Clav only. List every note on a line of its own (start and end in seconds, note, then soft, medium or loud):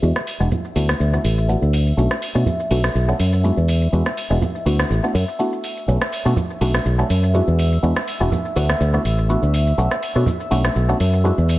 0.02 0.19 G#3 medium
0.02 0.19 B3 medium
0.02 0.19 D4 medium
0.02 0.19 E4 medium
0.02 0.20 F#4 medium
0.40 0.49 G#3 medium
0.40 0.49 B3 medium
0.40 0.49 D4 medium
0.40 0.49 E4 medium
0.40 0.50 F#4 medium
0.76 1.10 A3 medium
0.76 1.10 B3 medium
0.76 1.10 D4 medium
0.76 1.10 E4 medium
0.76 1.10 F#4 loud
1.13 1.22 A3 medium
1.13 1.22 B3 medium
1.13 1.23 D4 medium
1.13 1.23 E4 medium
1.13 1.23 F#4 medium
1.48 1.95 A3 medium
1.48 1.95 B3 medium
1.48 1.95 D4 medium
1.48 1.95 E4 medium
1.48 1.95 F#4 medium
1.97 2.14 A3 medium
1.97 2.14 B3 medium
1.97 2.14 C#4 medium
1.97 2.14 D4 medium
1.97 2.15 F#4 medium
2.35 2.44 A3 medium
2.35 2.44 B3 medium
2.35 2.44 C#4 medium
2.35 2.44 D4 medium
2.35 2.45 F#4 loud
2.70 3.05 A3 medium
2.70 3.05 B3 medium
2.70 3.05 C#4 medium
2.70 3.05 D4 medium
2.70 3.05 F#4 medium
3.08 3.17 A3 medium
3.08 3.18 B3 medium
3.08 3.18 C#4 medium
3.08 3.18 D4 medium
3.08 3.18 F#4 medium
3.44 3.90 G#3 medium
3.44 3.90 B3 medium
3.44 3.90 D4 medium
3.44 3.90 E4 medium
3.44 3.90 F#4 medium
3.92 4.09 G#3 medium
3.92 4.09 B3 medium
3.92 4.10 D4 medium
3.92 4.10 E4 medium
3.92 4.10 F#4 medium
4.30 4.39 G#3 medium
4.30 4.40 B3 medium
4.30 4.40 D4 medium
4.30 4.40 E4 medium
4.30 4.40 F#4 loud
4.66 5.00 A3 medium
4.66 5.00 B3 medium
4.66 5.00 D4 medium
4.66 5.01 E4 medium
4.66 5.01 F#4 loud
5.03 5.13 A3 medium
5.03 5.13 B3 medium
5.03 5.13 D4 medium
5.03 5.13 E4 medium
5.03 5.13 F#4 medium
5.39 5.85 A3 medium
5.39 5.85 B3 medium
5.39 5.85 D4 medium
5.39 5.85 E4 medium
5.39 5.86 F#4 medium
5.88 6.05 A3 medium
5.88 6.05 B3 medium
5.88 6.05 C#4 medium
5.88 6.05 D4 medium
5.88 6.05 F#4 medium
6.25 6.34 A3 medium
6.25 6.35 B3 medium
6.25 6.35 C#4 medium
6.25 6.35 D4 medium
6.25 6.35 F#4 loud
6.61 6.95 A3 medium
6.61 6.95 B3 medium
6.61 6.96 C#4 medium
6.61 6.96 D4 medium
6.61 6.96 F#4 medium
6.98 7.08 A3 medium
6.98 7.08 B3 medium
6.98 7.08 C#4 medium
6.98 7.08 D4 medium
6.98 7.08 F#4 medium
7.34 7.80 G#3 medium
7.34 7.80 B3 medium
7.34 7.80 D4 medium
7.34 7.80 E4 medium
7.34 7.81 F#4 medium
7.83 8.00 G#3 medium
7.83 8.00 B3 medium
7.83 8.00 D4 medium
7.83 8.00 E4 medium
7.83 8.00 F#4 medium
8.20 8.30 G#3 medium
8.20 8.30 B3 medium
8.20 8.30 D4 medium
8.20 8.30 E4 medium
8.20 8.30 F#4 loud
8.56 8.91 A3 medium
8.56 8.91 B3 medium
8.56 8.91 D4 medium
8.56 8.91 E4 medium
8.56 8.91 F#4 medium
8.93 9.03 A3 medium
8.93 9.03 B3 medium
8.93 9.03 D4 medium
8.93 9.03 E4 medium
8.93 9.03 F#4 medium
9.29 9.75 A3 medium
9.29 9.75 B3 medium
9.29 9.76 D4 medium
9.29 9.76 E4 medium
9.29 9.76 F#4 medium
9.78 9.95 A3 medium
9.78 9.95 B3 medium
9.78 9.95 C#4 medium
9.78 9.95 D4 medium
9.78 9.95 F#4 medium
10.15 10.25 A3 medium
10.15 10.25 B3 medium
10.15 10.25 C#4 medium
10.15 10.25 D4 medium
10.15 10.25 F#4 medium
10.51 10.85 A3 medium
10.51 10.86 B3 medium
10.51 10.86 C#4 medium
10.51 10.86 D4 medium
10.51 10.86 F#4 loud
10.89 10.98 A3 medium
10.89 10.98 B3 medium
10.89 10.98 C#4 medium
10.89 10.98 D4 medium
10.89 10.98 F#4 medium
11.24 11.59 G#3 medium
11.24 11.59 B3 medium
11.24 11.59 D4 medium
11.24 11.59 E4 medium
11.24 11.59 F#4 medium